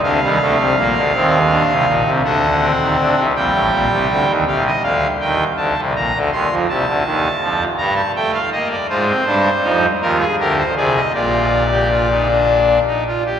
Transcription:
<<
  \new Staff \with { instrumentName = "Pipe organ" } { \time 6/8 \key c \minor \tempo 4. = 54 << { f''2. | fis''4. g''4. | f''16 ees''16 f''8 g''8 a''8 bes''8 c'''8 | a''4. bes''16 a''16 g''16 f''16 ees''16 d''16 |
\key f \dorian c''4. bes'16 aes'16 bes'16 c''16 d''16 ees''16 | d''2~ d''8 r8 | } \\ { d'16 g16 a8 bes8 c'8 d'8 ees'8 | d'8 c'4 g4. | r2. | r2. |
f'16 c'16 d'8 ees'8 f'8 g'8 aes'8 | f'8. g'16 f'16 ees'16 d'8. ees'16 f'16 g'16 | } >> }
  \new Staff \with { instrumentName = "Pipe organ" } { \clef bass \time 6/8 \key c \minor <d, d>16 <ees, ees>16 <d, d>16 <c, c>16 <bes,, bes,>16 <d, d>16 <ees, ees>8. <c, c>16 <bes,, bes,>16 <c, c>16 | <d, d>8. <ees, ees>16 <d, d>16 <c, c>16 <bes,, bes,>16 <a,, a,>16 <bes,, bes,>16 <c, c>16 <d, d>16 <ees, ees>16 | <c, c>8 <d, d>8 <ees, ees>8 <d, d>16 <c, c>16 <bes,, bes,>16 <d, d>16 <ees, ees>16 <f, f>16 | <c, c>16 <d, d>16 <ees, ees>8 <f, f>8 <g, g>8 a8 bes8 |
\key f \dorian <aes, aes>8 <g, g>8 <f, f>8 <ees, ees>8 <d, d>8 <c, c>8 | <bes,, bes,>2~ <bes,, bes,>8 r8 | }
>>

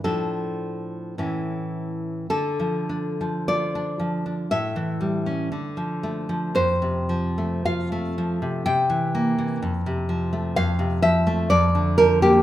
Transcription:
\new Staff \with { instrumentName = "Nylon-string guitar" } { \clef bass \time 2/4 \key d \minor \tempo 4 = 59 << { a'4. r8 | a'4 d''4 | e''2 | c''4 f''4 |
g''2 | \key f \major f''8 e''8 d''8 bes'16 g'16 | } \\ { <a, f d'>4 <a, e cis'>4 | d16 f16 d'16 f16 f'16 d'16 f16 d'16 | a,16 e16 g16 cis'16 d16 f16 a16 f16 | f,16 c16 f16 a16 f'16 a16 f16 c16 |
c16 e16 bes16 e16 f,16 c16 f16 a16 | f,16 c16 f16 a16 f,16 d16 f16 bes16 | } >> }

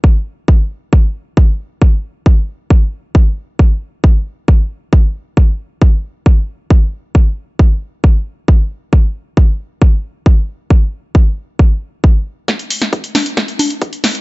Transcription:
\new DrumStaff \with { instrumentName = "Drums" } \drummode { \time 4/4 \tempo 4 = 135 bd4 bd4 bd4 bd4 | bd4 bd4 bd4 bd4 | bd4 bd4 bd4 bd4 | bd4 bd4 bd4 bd4 |
bd4 bd4 bd4 bd4 | bd4 bd4 bd4 bd4 | bd4 bd4 bd4 bd4 | <hh bd sn>16 hh16 hho16 <hh sn>16 <hh bd>16 hh16 <cgho hho sn>16 hh16 <hh bd sn>16 hh16 <cgho hho>16 hh16 <hh bd>16 hh16 <hho sn>16 hh16 | }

